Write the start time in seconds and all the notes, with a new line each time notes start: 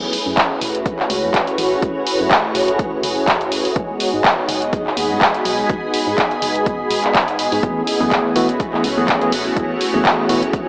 Already playing: A3 C#4 E4 F#4 G#4 B4
0.13 open hi-hat
0.26 F#2 C#5
0.37 kick, clap, closed hi-hat
0.61 E1, open hi-hat
0.75 closed hi-hat
0.86 kick, closed hi-hat
0.99 clap
1.10 C#2, open hi-hat
1.23 F#2
1.34 kick, clap, closed hi-hat
1.47 closed hi-hat
1.58 A1, open hi-hat
1.82 F#1, kick, closed hi-hat
2.07 open hi-hat
2.20 F#2
2.31 kick, clap, closed hi-hat
2.55 E1, open hi-hat
2.68 closed hi-hat
2.79 kick, closed hi-hat
3.03 F#1, open hi-hat
3.28 kick, clap, closed hi-hat
3.41 closed hi-hat
3.52 open hi-hat
3.65 open hi-hat
3.76 G#1 G#3 B3 D#4 F#4 G#4, kick, closed hi-hat
3.94 D#5
4.00 open hi-hat
4.13 G#2
4.24 B5, kick, clap, closed hi-hat
4.35 G#5
4.49 F#1, open hi-hat
4.62 closed hi-hat
4.73 kick, closed hi-hat
4.86 clap
4.97 D#2, open hi-hat
5.10 G#2
5.21 kick, clap, closed hi-hat
5.34 closed hi-hat
5.45 B1, open hi-hat
5.70 G#1, kick, closed hi-hat
5.94 open hi-hat
6.07 G#2
6.18 kick, clap, closed hi-hat
6.31 closed hi-hat
6.42 F#1, open hi-hat
6.55 closed hi-hat
6.66 kick, closed hi-hat
6.91 D#1, open hi-hat
7.04 clap
7.15 kick, clap, closed hi-hat
7.28 closed hi-hat
7.39 B1, open hi-hat
7.52 G#2, open hi-hat
7.63 F#1 E3 A3 B3 C#4 E4 F#4 G#4, kick, closed hi-hat
7.82 C#5
7.87 open hi-hat
8.01 F#2 E3 A3 B3 G#4
8.11 kick, clap, closed hi-hat
8.36 E1 E3 A3 B3 F#4, open hi-hat
8.49 closed hi-hat
8.60 kick, closed hi-hat
8.73 E3 A3 B3 G#4, clap
8.84 C#2, open hi-hat
8.97 F#2 E3 A3 B3 G#4
9.08 kick, clap, closed hi-hat
9.21 E3 A3 B3 G#4, closed hi-hat
9.32 A1, open hi-hat
9.57 F#1 E3 A3 B3 G#4, kick, closed hi-hat
9.81 open hi-hat
9.94 F#2 E3 A3 B3 G#4
10.05 kick, clap, closed hi-hat
10.29 E1 E3 A3 B3 F#4, open hi-hat
10.43 closed hi-hat
10.53 kick, closed hi-hat